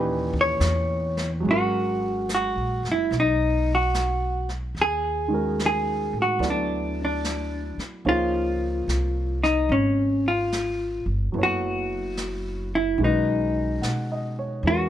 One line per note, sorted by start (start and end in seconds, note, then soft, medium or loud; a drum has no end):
0.00 0.59 D#2 medium
0.00 0.29 A#2 medium
0.00 0.29 E3 medium
0.00 0.29 C#4 medium
0.00 0.29 D#4 medium
0.00 0.29 G4 medium
0.00 0.33 B4 medium
0.34 kick soft
0.41 1.31 C#5 medium
0.60 1.42 E2 medium
0.60 snare medium
0.60 hi-hat pedal soft
1.17 snare soft
1.40 4.74 F#3 soft
1.40 4.75 G#3 soft
1.45 2.52 G#1 medium
1.45 4.77 C#4 soft
1.45 4.78 F#4 soft
1.45 brush sweep soft
1.51 2.33 F#4 medium
1.51 4.80 A#4 medium
2.29 snare soft
2.29 hi-hat pedal medium
2.35 2.88 F#4 medium
2.56 2.82 A#1 soft
2.83 3.09 F#1 medium
2.83 snare soft
2.92 3.16 E4 medium
3.11 4.72 B1 medium
3.11 brush sweep soft
3.11 snare soft
3.20 3.72 D#4 medium
3.75 4.49 F#4 medium
3.94 snare soft
3.94 hi-hat pedal soft
4.49 snare soft
4.75 6.09 D#2 medium
4.75 brush sweep soft
4.75 snare soft
4.82 5.64 G#4 loud
5.28 6.40 D#3 soft
5.28 6.41 G#3 soft
5.28 6.41 C#4 soft
5.33 6.43 F#4 soft
5.33 6.43 A#4 medium
5.59 snare soft
5.59 hi-hat pedal medium
5.66 6.19 G#4 medium
6.13 6.38 A2 medium
6.22 6.47 F#4 medium
6.39 7.73 D2 medium
6.39 8.05 F#3 soft
6.39 8.05 B3 soft
6.39 8.06 E4 soft
6.39 8.06 A4 soft
6.39 8.06 D5 soft
6.39 brush sweep soft
6.39 snare soft
6.50 7.02 D4 medium
7.05 7.79 D4 medium
7.24 snare soft
7.24 hi-hat pedal soft
7.77 muted upright bass stroke soft
7.77 snare soft
8.05 8.84 C#2 medium
8.05 11.35 F3 soft
8.05 11.35 A#3 soft
8.05 11.35 D#4 soft
8.05 9.43 F4 medium
8.05 11.35 G#4 soft
8.05 11.35 C#5 soft
8.05 brush sweep soft
8.87 9.66 C2 medium
8.87 snare soft
8.87 hi-hat pedal soft
9.44 9.72 D#4 medium
9.44 snare soft
9.69 11.02 G#1 medium
9.69 10.27 C#4 medium
9.69 brush sweep soft
10.28 11.05 F4 medium
10.52 snare soft
10.52 hi-hat pedal soft
11.06 11.32 G1 medium
11.32 12.95 F#1 medium
11.32 12.98 F#3 soft
11.32 12.99 B3 soft
11.32 13.00 E4 soft
11.32 13.00 A4 soft
11.32 brush sweep soft
11.38 13.02 C#5 soft
11.43 12.75 F#4 medium
12.17 snare soft
12.17 hi-hat pedal soft
12.75 13.02 E4 medium
12.98 13.78 B1 medium
12.98 14.65 D#3 soft
12.98 14.65 G#3 soft
12.98 14.65 C#4 soft
12.98 brush sweep soft
13.03 14.36 D#4 medium
13.03 14.67 F#4 soft
13.03 14.67 B4 soft
13.81 14.61 B2 medium
13.81 14.33 F#5 soft
13.81 snare soft
13.81 hi-hat pedal soft
14.12 14.54 D#5 soft
14.39 14.81 C#5 soft
14.63 14.89 E2 medium
14.63 14.89 E3 soft
14.63 14.89 G#3 soft
14.63 14.89 C#4 soft
14.63 brush sweep soft
14.67 14.89 F#4 medium
14.67 14.89 F#4 soft
14.67 14.89 A#4 soft